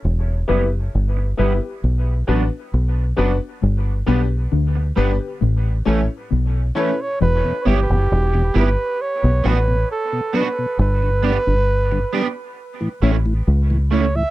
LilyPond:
<<
  \new Staff \with { instrumentName = "Flugelhorn" } { \time 4/4 \key e \dorian \tempo 4 = 67 r1 | r2. r8 b'16 cis''16 | b'8 g'4 b'8 cis''8 b'8 a'8 b'8 | b'2 r4. cis''16 e''16 | }
  \new Staff \with { instrumentName = "Grand piano" } { \time 4/4 \key e \dorian r8 <b e' g' b'>16 r8. <b e' g' b'>16 <g' b'>16 r8 <b d' fis' b'>16 r8. <b d' fis' b'>16 r16 | r8 <b d' g' b'>16 r8. <b d' g' b'>16 <g' b'>16 r8 <cis' e' a' cis''>16 r8. <cis' e' a' cis''>16 r16 | r1 | r1 | }
  \new Staff \with { instrumentName = "Clean electric guitar" } { \time 4/4 \key e \dorian r8 <g b e'>8 r8 <g b e'>8 r8 <fis b d'>8 r8 <fis b d'>8 | r8 <g b d'>8 r8 <g b d'>8 r8 <e a cis'>8 r8 <e a cis'>8 | r8 <b e' g'>8 r8 <b e' g'>8 r8 <b d' fis'>8 r8 <b d' fis'>8 | r8 <b d' g'>8 r8 <b d' g'>8 r8 <a cis' e'>8 r8 <a cis' e'>8 | }
  \new Staff \with { instrumentName = "Tonewheel organ" } { \clef bass \time 4/4 \key e \dorian << { r1 | r1 | r8 <g b e'>8 r8 <g b e'>8 r8 <fis b d'>8 r8 <fis b d'>8 | r8 <g b d'>8 r8 <g b d'>8 r8 <a cis' e'>8 r8 <a cis' e'>8 | } \\ { r1 | r1 | r16 <e, b,>16 r16 <e, b,>16 r16 <e, b,>16 r8. b,16 r16 b,16 r16 b,16 r16 b,16 | r16 <g, d>16 r16 <g, d>16 r16 <g, d>16 r8. <a, e>16 r16 <a, e>16 r16 <a, e>16 r16 <a, e>16 | } >> }
  \new Staff \with { instrumentName = "Clean electric guitar" } { \clef bass \time 4/4 \key e \dorian r1 | g,8 b,8 d8 g,16 r16 a,8 a,16 r16 b,8 r8 | e,16 r2. r8. | r1 | }
  \new Staff \with { instrumentName = "Fingered electric bass" } { \clef bass \time 4/4 \key e \dorian e,,8 fis,,8 g,,8 g,,16 r16 b,,8 a,,16 r16 b,,8 fis,,16 r16 | g,,8 b,,8 d,8 g,,16 r16 a,,8 a,,16 r16 b,,8 r8 | e,,16 r16 g,,16 fis,,16 e,,8 g,,16 r8 b,,16 a,,8 r4 | g,,8. g,,8. r4 a,,8 cis,4 | }
>>